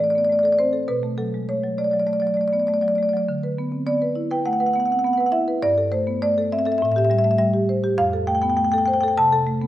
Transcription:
0.00 A3 D5
0.10 D5
0.15 B3 D5
0.25 D5
0.29 A3 D5
0.39 D5
0.43 A4 D5
0.53 D5
0.59 C4 C5
0.73 A4
0.88 B2 B4
1.03 A3
1.18 F#3 A4
1.34 G#3
1.49 A3 C#5
1.63 F#3
1.78 A3 D5
1.84 D5
1.91 F#3 D5
2.00 D5
2.07 A3 D5
2.13 D5
2.20 F#3 D5
2.27 D5
2.34 A3 D5
2.41 D5
2.48 D5
2.53 B3 D5
2.60 D5
2.67 A3 D5
2.74 D5
2.81 F#3 D5
2.88 D5
2.95 A3 D5
3.03 D5
3.09 D5
3.13 F#3 D5
3.29 D3
3.43 B4
3.58 B3
3.72 C4
3.87 B3 D5
4.02 B4
4.15 E4
4.31 B4 G5
4.45 A3 F#5
4.53 F#5
4.60 B4 F#5
4.66 F#5
4.73 B3 F#5
4.80 F#5
4.85 F#5
4.90 C4 F#5
4.99 F#5
5.04 B3 F#5
5.13 F#5
5.17 B4 F#5
5.26 F#5
5.32 E4 E5
5.48 B4
5.63 G2 D5
5.78 A4
5.92 A3 C5
6.07 B3
6.22 A3 D5
6.38 A4
6.52 C4 E5
6.59 E5
6.65 A4 E5
6.72 E5
6.78 E5
6.82 A2 E5
6.92 E5
6.96 G4 E5
7.05 E5
7.10 G3 E5
7.18 E5
7.24 A3 E5
7.31 E5
7.38 G3 E5
7.54 G4
7.69 C5
7.84 G4
7.98 F2 F5
8.13 A4
8.27 A3 G5
8.35 G5
8.42 B3 G5
8.50 G5
8.57 A3 G5
8.64 G5
8.72 A4 G5
8.78 G5
8.86 C5 G5
8.93 G5
9.01 A4 G5
9.08 G5
9.17 C3 A5
9.32 A4
9.46 A3
9.62 B3

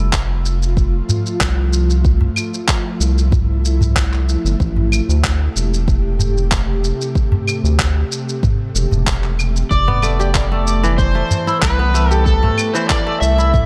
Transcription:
Already playing: F1 F3 A3 E4 F4
0.13 kick, clap, shaker
0.46 shaker
0.63 shaker
0.77 kick, shaker
1.09 udu, shaker
1.26 shaker
1.41 C2, kick, clap, shaker
1.73 shaker
1.90 shaker
2.04 E4, kick, shaker
2.21 udu
2.36 claves, shaker
2.54 shaker
2.68 kick, clap, shaker
3.00 C2, shaker
3.18 shaker
3.32 kick, udu, shaker
3.65 shaker
3.81 udu, shaker
3.96 kick, clap, shaker
4.13 clap
4.29 shaker
4.45 G1, shaker
4.60 A1 C3 G4, kick, shaker
4.77 udu
4.92 claves, shaker
5.09 D2, shaker
5.24 kick, clap, shaker
5.56 E1, shaker
5.74 shaker
5.88 kick, shaker
6.19 udu, shaker
6.37 shaker
6.52 kick, clap, shaker
6.84 shaker
7.01 shaker
7.15 kick, shaker
7.32 udu
7.48 claves, shaker
7.64 D2, shaker
7.79 kick, clap, shaker
8.12 shaker
8.29 shaker
8.43 kick, udu, shaker
8.75 E1, shaker
8.91 E1, udu, shaker
9.07 kick, clap, shaker
9.24 clap
9.39 claves, shaker
9.56 shaker
9.71 F1 E3 D5, kick, shaker
9.88 B3, udu
10.02 A3, claves, shaker
10.19 G4, shaker
10.35 kick, clap, shaker
10.52 A3
10.67 shaker
10.83 E3, shaker
10.98 C5, kick, shaker
11.15 A3
11.31 udu, shaker
11.47 E4, shaker
11.62 C2 B4, kick, clap, shaker
11.79 B3
11.94 A3, shaker
12.11 G4 A4, shaker
12.25 A4, kick, shaker
12.43 A3, udu
12.58 claves, shaker
12.73 E3 C5, shaker
12.89 D5, kick, clap, shaker
13.07 A3
13.20 C2 E5, shaker
13.38 E4, shaker
13.54 kick, udu, shaker

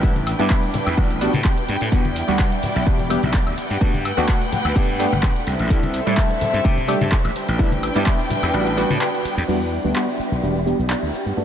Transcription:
Already playing: D4 B4 G5
0.02 G3 B3 D4 E4, kick, closed hi-hat, shaker
0.16 closed hi-hat, high conga, shaker
0.27 open hi-hat, high woodblock, shaker
0.39 G2 G3 B3 D4 E4, closed hi-hat, shaker
0.50 G3 B3 D4 E4, kick, clap, closed hi-hat, shaker
0.63 closed hi-hat
0.74 muted slap bass stroke, open hi-hat, high conga, low conga, shaker
0.86 E2, closed hi-hat, high woodblock, shaker
0.97 A1 G3 B3 D4 F#4, kick, closed hi-hat, shaker
1.10 closed hi-hat, shaker
1.21 G3 B3 D4 F#4, open hi-hat, shaker
1.34 A2, closed hi-hat, high conga, shaker
1.44 kick, clap, closed hi-hat, shaker
1.57 closed hi-hat, shaker
1.68 G2, open hi-hat, shaker
1.81 A2, closed hi-hat, shaker
1.91 G3 B3 D4 E4 F#4 D5, kick, closed hi-hat, shaker
2.05 closed hi-hat, high conga, shaker
2.16 open hi-hat, shaker
2.28 D2 G3 B3 D4 F#4, closed hi-hat, shaker
2.39 G3 B3 D4 F#4, kick, clap, closed hi-hat
2.52 closed hi-hat
2.62 muted slap bass stroke, open hi-hat, high conga, low conga, shaker
2.75 B1, closed hi-hat, shaker
2.86 E1 G3 B3 D4 G4, kick, closed hi-hat, shaker
2.99 closed hi-hat, low conga, shaker
3.10 G3 B3 D4 G4, open hi-hat, high woodblock, shaker
3.23 B1, closed hi-hat, high conga, shaker
3.34 kick, clap, closed hi-hat, shaker
3.47 D2, closed hi-hat, high woodblock, shaker
3.58 B4 F#5 G5, muted slap bass stroke, open hi-hat, shaker
3.70 G2, closed hi-hat, shaker
3.81 G2 A3 B3 D4 F#4, kick, closed hi-hat, shaker
3.94 closed hi-hat, high conga, shaker
4.05 open hi-hat, high woodblock, shaker
4.17 D2 A3 B3 D4 F#4, closed hi-hat, shaker
4.28 A3 B3 D4 F#4, kick, clap, closed hi-hat, shaker
4.42 closed hi-hat
4.52 muted slap bass stroke, open hi-hat, high conga, low conga, shaker
4.64 D2, closed hi-hat, high woodblock, shaker
4.75 G2 A3 B3 D4 G4, kick, closed hi-hat, shaker
4.88 closed hi-hat, shaker
4.99 A3 B3 D4 G4, open hi-hat, shaker
5.12 G1, closed hi-hat, high conga, shaker
5.23 kick, clap, closed hi-hat, shaker
5.35 closed hi-hat, shaker
5.47 C2 C4 A4 E5, open hi-hat, shaker
5.59 A1, closed hi-hat, shaker
5.70 C2 G3 A3 D4 E4, kick, closed hi-hat, shaker
5.82 closed hi-hat, high conga, shaker
5.94 open hi-hat, shaker
6.06 A2 G3 A3 D4 E4, closed hi-hat, shaker
6.17 G3 A3 D4 E4, kick, clap, closed hi-hat, shaker
6.30 closed hi-hat
6.41 muted slap bass stroke, open hi-hat, high conga, low conga, shaker
6.53 G2, closed hi-hat, shaker
6.64 C3 G3 A3 D4 G4, kick, closed hi-hat, shaker
6.76 closed hi-hat, low conga, shaker
6.88 G3 A3 D4 G4, open hi-hat, high woodblock, shaker
7.01 G2, closed hi-hat, high conga, shaker
7.12 kick, clap, closed hi-hat, shaker
7.24 A1, closed hi-hat, high woodblock, shaker
7.35 D4 B4 G5, muted slap bass stroke, open hi-hat, shaker
7.48 A1, closed hi-hat, shaker
7.59 G3 B3 D4 E4, kick, closed hi-hat, shaker
7.72 closed hi-hat, high conga, shaker
7.83 open hi-hat, high woodblock, shaker
7.95 G2 G3 B3 D4 E4, clap, closed hi-hat, shaker
8.06 G3 B3 D4 E4, kick, clap, closed hi-hat, shaker
8.19 closed hi-hat, shaker
8.30 muted slap bass stroke, open hi-hat, high conga, low conga, shaker
8.43 E2, closed hi-hat, high woodblock, shaker
8.53 A1 G3 B3 D4 F#4, closed hi-hat, shaker
8.67 closed hi-hat, shaker
8.77 G3 B3 D4 F#4, open hi-hat, shaker
8.90 A2, closed hi-hat, high conga, shaker
9.01 clap, closed hi-hat, shaker
9.14 closed hi-hat, shaker
9.24 muted slap bass stroke, open hi-hat, shaker
9.37 E2, closed hi-hat, shaker
9.48 E2 G3 B3 D4 E4 F#4 D5 G5, crash, shaker
9.62 shaker
9.73 shaker
9.84 D2 G3 B3 D4 F#4, shaker
9.95 G3 B3 D4 F#4, clap, shaker
10.09 shaker
10.19 muted slap bass stroke, shaker
10.31 B1, shaker
10.43 E1 G3 B3 D4 G4, shaker
10.56 shaker
10.66 G3 B3 D4 G4, shaker
10.79 B1, shaker
10.90 clap, shaker
11.03 D2, shaker
11.14 B4 F#5 G5, shaker
11.26 G2, shaker
11.37 G2 A3 B3 D4 F#4, shaker

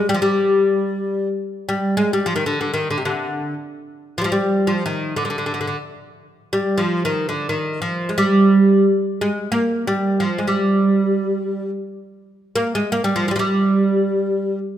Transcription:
0.09 G3
0.14 F3
0.22 G3
1.69 G3
1.97 G#3
2.13 G3
2.26 F3
2.36 D#3
2.46 D3
2.61 D3
2.74 D#3
2.91 D3
2.98 C3
3.05 D3
4.18 F3 G3
4.24 F3
4.32 G3
4.67 F3
4.86 D#3
5.16 D3
5.25 D3
5.30 D3
5.38 D3
5.46 D3
5.54 D3
5.61 D3
5.67 D3
6.53 G3
6.78 F3
7.05 D#3
7.29 D3
7.49 D#3
7.82 F3
8.09 G#3
8.18 G3
9.21 G#3
9.52 A#3
9.87 G3
10.20 F3
10.38 G#3
10.47 G3
12.56 A#3
12.75 G#3
12.92 A#3
13.04 G3
13.16 F3
13.28 F3 G3
13.36 F3 G3

